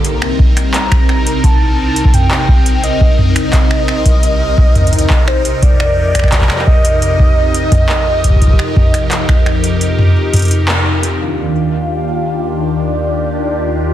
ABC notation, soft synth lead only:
X:1
M:4/4
L:1/8
Q:1/4=86
K:Eb
V:1 name="Soft synth lead"
z2 b2 =a2 g2 | e6- e c | d3 e4- e- | e6 z2 |
f4 d4 |]